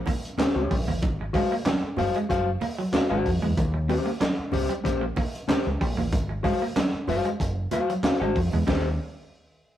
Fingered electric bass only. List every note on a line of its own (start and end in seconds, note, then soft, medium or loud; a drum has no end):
0.56 0.68 C#2 loud
0.71 0.84 A#1 medium
0.88 1.03 A1 medium
1.03 1.42 G#1 loud
1.83 muted fingered electric bass stroke soft
1.98 2.11 F#1 medium
2.30 2.56 F#1 loud
3.11 3.23 G#1 loud
3.26 3.39 F2 loud
3.43 3.54 E2 medium
3.58 3.97 D#2 loud
4.39 muted fingered electric bass stroke soft
4.54 4.67 C#2 medium
4.85 5.11 A#1 medium
5.67 5.78 C#2 medium
5.81 5.94 A#1 medium
5.98 6.13 A1 medium
6.13 6.52 G#1 loud
6.94 muted fingered electric bass stroke soft
7.09 7.22 F#1 medium
7.40 7.66 F#1 loud
8.21 8.33 G#1 loud
8.36 8.49 F2 medium
8.53 8.65 E2 medium
8.67 8.97 D#2 loud